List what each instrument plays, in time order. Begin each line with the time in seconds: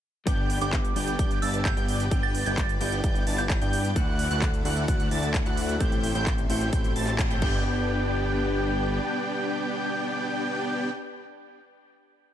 0.26 analog synth bass G1, clean electric guitar G3 B3 D4 G4, supersaw synth B3 D4 G4 B4 D5 G5 D6, analog synth lead G6, kick, closed hi-hat
0.50 open hi-hat
0.61 analog synth bass G1, supersaw synth B3 D4 G4 D5 G5, synth bell D6, analog synth lead G6, closed hi-hat
0.73 kick, clap, closed hi-hat
0.85 closed hi-hat
0.95 analog synth bass G1, clean electric guitar G3 B3 D4 G4, supersaw synth B3 D4 G4 D5 G5, analog synth lead G6, open hi-hat
1.08 closed hi-hat
1.19 analog synth bass G1, supersaw synth D4 D5, analog synth lead G6, kick, closed hi-hat
1.31 closed hi-hat
1.42 analog synth bass G1, supersaw synth B3 D4 G4 D5 A5, synth bell E6, analog synth lead A6, open hi-hat
1.54 closed hi-hat
1.65 synth bell G6, kick, clap, closed hi-hat
1.77 analog synth bass G1, supersaw synth B3 D4 G4 D5 G5, analog synth lead G6, closed hi-hat
1.88 open hi-hat
2.00 closed hi-hat
2.10 analog synth bass G1, clean electric guitar G3 B3 D4 G4, supersaw synth B3 D4 G4 D5 G5, analog synth lead G6, kick, closed hi-hat
2.23 synth bell A6
2.35 open hi-hat
2.46 analog synth bass G1, supersaw synth B3 D4 G4 D5 G5, analog synth lead G6, synth bell A6, closed hi-hat
2.58 kick, clap, closed hi-hat
2.69 closed hi-hat
2.80 analog synth bass G1, clean electric guitar G3 B3 D4 E4, supersaw synth B3 D4 G4 D5 G5, analog synth lead G6, open hi-hat
2.92 closed hi-hat
3.04 analog synth bass G1, supersaw synth B3 D4 G4 D5, analog synth lead G6, kick, closed hi-hat
3.15 closed hi-hat
3.27 analog synth bass G1, supersaw synth B3 D4 G4 D5 A5, analog synth lead A6, open hi-hat
3.38 synth bell G6, clap, closed hi-hat
3.50 synth bell G6, kick, clap, closed hi-hat
3.61 analog synth bass G2, supersaw synth B3 D4 G4 D5 G5, analog synth lead G6, closed hi-hat
3.73 open hi-hat
3.85 closed hi-hat
3.95 analog synth bass D2, clean electric guitar A3 D4 E4 F#4, supersaw synth A3 E4 F#4 A4 D5 E5 F#5, analog synth lead F#6, kick, closed hi-hat
4.19 open hi-hat
4.31 analog synth bass D2, supersaw synth A3 E4 F#4 D5 F#5, analog synth lead F#6, closed hi-hat
4.42 kick, clap, closed hi-hat
4.54 closed hi-hat
4.64 analog synth bass D2, clean electric guitar A3 D4 E4 F#4, supersaw synth A3 E4 F#4 D5 F#5, analog synth lead F#6, open hi-hat
4.77 closed hi-hat
4.88 analog synth bass D2, supersaw synth E4 F#4 F#5, analog synth lead F#6, kick, closed hi-hat
5.00 closed hi-hat
5.11 analog synth bass D2, supersaw synth A3 E4 F#4 D5 A5, analog synth lead A6, open hi-hat
5.23 closed hi-hat
5.34 kick, clap, closed hi-hat
5.46 analog synth bass D2, supersaw synth A3 E4 F#4 D5 F#5, analog synth lead F#6, closed hi-hat
5.57 open hi-hat
5.69 closed hi-hat
5.79 analog synth bass A1, clean electric guitar A3 C4 E4 G4, supersaw synth A3 E4 G4 C5 G5 C6, analog synth lead G6, kick, closed hi-hat
5.92 closed hi-hat
6.04 open hi-hat
6.15 analog synth bass A1, supersaw synth A3 E4 G4 C5 G5, analog synth lead G6, closed hi-hat
6.27 kick, clap, closed hi-hat
6.38 closed hi-hat
6.49 analog synth bass A1, clean electric guitar A3 C4 E4 F#4, supersaw synth A3 E4 G4 C5 G5, analog synth lead G6, open hi-hat
6.61 closed hi-hat
6.73 analog synth bass A1, supersaw synth A3 E4 G4 C5 G5, analog synth lead G6, kick, closed hi-hat
6.84 closed hi-hat
6.96 analog synth bass A1, supersaw synth A3 E4 G4 C5 A5, analog synth lead A6, open hi-hat
7.07 clap, closed hi-hat
7.19 kick, clap, closed hi-hat
7.30 analog synth bass A1, supersaw synth A3 E4 G4 C5 G5, analog synth lead G6, closed hi-hat
7.40 analog synth bass G1, clean electric guitar G3 B3 D4 G4, supersaw synth B3 D4 G4 B4 D5 G5, analog synth lead G6, kick, crash